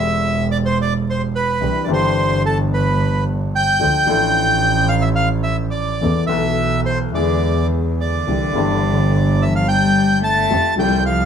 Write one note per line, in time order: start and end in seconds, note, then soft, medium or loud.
0.00 1.51 E1 medium
0.00 1.52 E1 loud
0.00 1.51 E2 medium
0.00 1.50 E3 medium
0.00 1.51 A3 medium
0.00 1.52 C4 medium
0.00 1.52 G4 medium
0.00 0.47 E5 loud
0.51 0.58 D5 loud
0.65 0.78 C5 medium
0.82 0.93 D5 loud
1.10 1.22 C5 medium
1.35 1.85 B4 medium
1.61 1.85 C2 medium
1.61 1.85 C3 medium
1.61 1.85 E3 soft
1.61 1.85 C4 soft
1.61 1.85 D4 soft
1.61 1.85 G4 medium
1.84 3.71 E3 medium
1.84 1.90 D5 medium
1.88 3.72 G1 medium
1.88 3.72 G1 loud
1.88 3.72 G2 medium
1.88 3.72 C4 medium
1.88 3.72 D4 medium
1.88 3.73 G4 medium
1.93 2.42 C5 loud
2.46 2.58 A4 medium
2.74 3.24 B4 medium
3.56 4.89 G5 loud
3.80 4.04 D2 medium
3.80 4.05 D2 medium
3.80 4.05 D3 medium
3.80 4.04 F3 medium
3.80 4.04 A3 soft
3.80 4.04 D4 soft
3.80 4.05 A4 medium
4.06 5.92 A1 medium
4.06 5.93 A1 loud
4.06 5.92 A2 medium
4.06 5.91 F3 medium
4.06 5.92 A3 medium
4.06 5.93 D4 medium
4.06 5.93 A4 medium
4.89 5.03 F5 loud
5.02 5.09 E5 medium
5.15 5.29 F5 loud
5.43 5.57 E5 loud
5.71 6.24 D5 loud
6.01 6.26 E2 medium
6.01 6.26 E3 medium
6.01 6.26 A3 soft
6.01 6.26 B3 soft
6.01 6.26 A4 medium
6.27 7.09 B1 medium
6.27 7.10 B1 loud
6.27 7.09 B2 medium
6.27 7.09 E3 medium
6.27 7.09 A3 medium
6.27 7.10 B3 medium
6.27 6.81 E5 loud
6.32 7.11 A4 medium
6.86 6.99 C5 medium
7.14 8.22 E2 loud
7.14 8.22 E2 medium
7.14 7.67 D3 medium
7.14 8.22 E3 medium
7.14 8.21 G#3 medium
7.14 8.22 B3 medium
7.14 8.23 G#4 medium
7.14 7.67 D5 medium
8.01 9.37 D3 medium
8.01 9.44 D5 medium
8.27 8.51 C2 medium
8.27 8.51 C3 medium
8.27 8.51 E3 soft
8.27 8.51 C4 soft
8.27 8.51 D4 soft
8.27 8.52 G4 medium
8.53 10.40 G1 medium
8.53 10.40 G1 loud
8.53 10.40 G2 medium
8.53 10.39 E3 medium
8.53 10.40 C4 medium
8.53 10.40 D4 medium
8.58 10.41 G4 medium
9.42 9.54 E3 medium
9.42 9.54 E5 medium
9.56 9.68 F3 medium
9.56 9.67 F5 medium
9.68 10.20 G3 medium
9.68 10.19 G5 loud
10.24 10.75 A3 loud
10.24 10.74 A5 loud
10.50 10.73 F2 medium
10.50 10.74 F2 medium
10.50 10.73 F3 medium
10.50 10.73 A3 soft
10.50 10.73 C4 soft
10.50 10.74 G4 medium
10.76 11.25 C2 loud
10.76 11.25 C2 medium
10.76 11.25 C3 medium
10.76 11.25 F3 medium
10.76 11.04 G3 loud
10.76 11.25 A3 medium
10.76 11.25 C4 medium
10.76 11.04 G5 loud
10.81 11.25 G4 medium
11.06 11.25 F3 medium
11.06 11.25 F5 medium